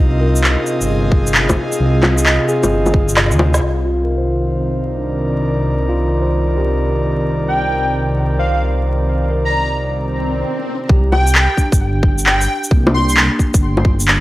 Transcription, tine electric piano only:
Already playing: D#4 G4
0.21 A#4
2.25 D#5
2.48 G#4
3.85 F4
4.04 A#4
4.17 C5
4.98 D4
5.89 F4
6.09 A#4
6.22 C5
6.57 G4
8.39 C5
9.30 A#4
9.50 D5
10.89 G4
11.57 D4
12.71 A#3
12.91 D4

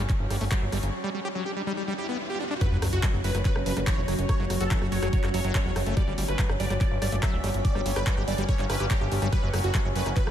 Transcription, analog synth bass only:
0.20 G1
0.30 G1
0.41 G1
0.62 G1
0.72 G1
0.83 G1
2.72 F#1
2.82 F#1
2.93 F#1
3.14 F#1
3.24 F#1
3.35 F#1
3.56 F#1
3.66 F#1
3.77 F#1
3.98 E1
4.08 F#1
4.19 F#1
4.40 F#1
4.50 F#1
4.61 F#1
4.82 F#1
4.92 F#1
5.02 F#1
5.23 F#1
5.34 F#1
5.44 F#1
5.65 E1
5.76 F#1
5.86 F#1
6.07 G1
6.18 G1
6.28 G1
6.49 G1
6.60 G1
6.70 G1
6.91 G1
7.02 G1
7.12 G1
7.33 D1
7.44 G1
7.54 G1
7.75 G1
7.86 G1
7.96 G1
8.17 G1
8.28 G1
8.38 G1
8.59 G1
8.70 G1
8.80 G1
9.01 G1
9.12 G1
9.22 G1
9.43 F#1
9.54 F#1
9.64 F#1
9.85 F#1
9.95 F#1
10.06 F#1
10.27 F#1

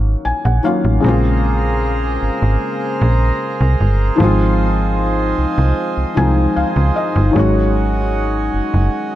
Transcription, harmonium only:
1.04 G#4 A#4 C5 A#5
4.20 F4 D#5 G#5
7.35 F#4 C#5

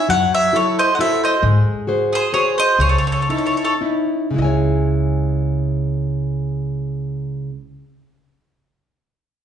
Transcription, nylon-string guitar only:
0.09 F#3
0.52 E4 F#4 A4
0.99 E4 F#4 A4
1.42 G#3
1.87 F#4 G#4 C5
2.33 F#4 G#4 C5
2.78 C#3
3.29 C#4 D#4 E4
3.81 C#4 D#4 E4
4.31 C#3 G#3
4.36 E4 D#5
4.42 C#5 G#5

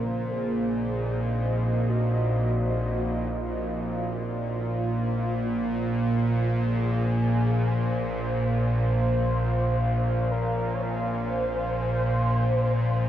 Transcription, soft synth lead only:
Already playing: A#4
0.31 G#4
1.89 F#4
2.41 F#4
4.51 F4
6.66 G#4
7.71 C5
8.74 C5
10.31 A#4
10.74 C#5
10.82 C5

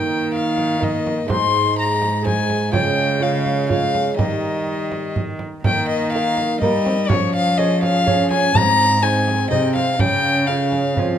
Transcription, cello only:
Already playing: D#3
1.31 G#2
2.73 C#3
4.18 D#3
5.64 D#3
6.60 G3
7.09 F3
8.54 G#2
9.51 C3
9.99 C#3
10.97 F3

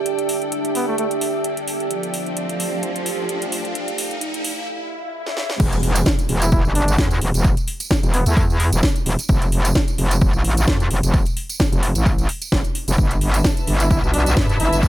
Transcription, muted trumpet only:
0.75 B3
0.88 A3
0.98 A3
6.42 E4
6.52 E4
6.75 D4
8.14 B3
8.26 A3
8.37 A3
13.80 E4
13.91 E4
14.14 D4
14.60 E4

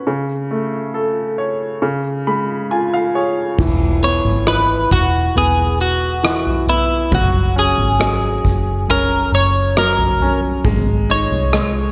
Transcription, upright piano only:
0.07 C#3
0.51 A3
0.94 A4
1.38 C#5
1.82 C#3
2.27 G#3 B5
2.71 F4 G#5
2.94 F5
3.15 G#4 C#5
3.60 E3
4.03 B3
4.47 E3
5.36 B3
6.23 E3
6.69 B3
7.13 F#3
7.56 C#4
8.00 F#3
8.89 C#4
9.77 F#3
10.22 C#4
10.65 G#3
11.10 D#4
11.53 G#3

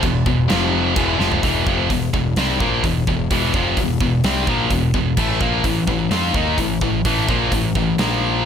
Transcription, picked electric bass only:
0.03 E1
0.26 E1
0.51 F1
0.96 E1
1.19 F1
1.43 E1
1.66 F1
1.90 E1
2.14 E1
2.36 C2
2.61 A#1
2.83 E1
3.07 E1
3.31 E1
3.54 F1
3.77 E1
4.01 E1
4.24 C2
4.48 A#1
4.71 E1
4.94 E1
5.17 A1
5.41 A#1
5.64 A1
5.88 A1
6.11 F2
6.34 D#2
6.58 A1
6.82 A1
7.05 A1
7.29 A#1
7.52 A1
7.75 A1
8.00 A#1

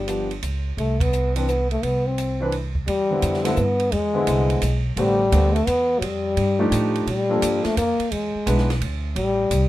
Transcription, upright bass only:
Already playing: G1
0.43 C#2
0.77 C2
1.83 C2
2.87 E2
3.22 F2
3.57 G2
3.92 E2
4.27 C2
4.62 B1
4.97 A1
5.32 D2
5.67 E2
6.01 F2
6.37 G2
6.71 A2
7.07 A#2
7.42 G2
7.65 muted upright bass stroke
7.77 F2
7.99 muted upright bass stroke
8.12 E2
8.35 muted upright bass stroke
8.46 B1
8.81 D2
9.16 A1
9.51 C2

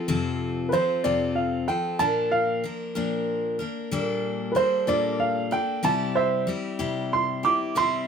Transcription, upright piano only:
0.69 B4
0.73 C5
1.04 D5
1.35 F5
1.68 G5
1.99 A5
2.31 F5
4.52 B4
4.56 C5
4.88 D5
5.20 F5
5.52 G5
5.85 A5
6.15 C5 E5
7.13 C6
7.45 D6
7.77 C6

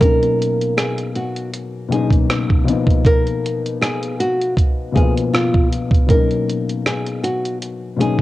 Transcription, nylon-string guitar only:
0.01 A#4
0.77 G#4
1.16 F#4
1.92 G#4
3.06 A#4
3.81 G#4
4.20 F#4
4.95 G#4
5.34 F4
6.10 A#4
6.86 G#4
7.23 F#4
8.00 G#4

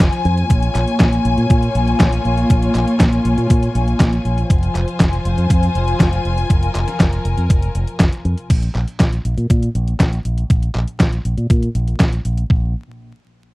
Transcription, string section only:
Already playing: F3 F4 C5 G#5
0.50 A#3 F4 C#5
4.50 F3 F4 C5 G#5
6.50 A#4

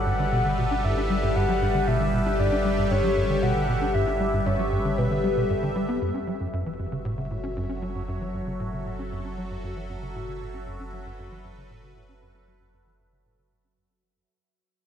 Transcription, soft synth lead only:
Already playing: F#5
0.84 E5
1.36 F#5
1.88 E5
2.39 D5
2.91 C#5
3.43 F#5
3.94 E5
4.46 C#5
4.98 B4

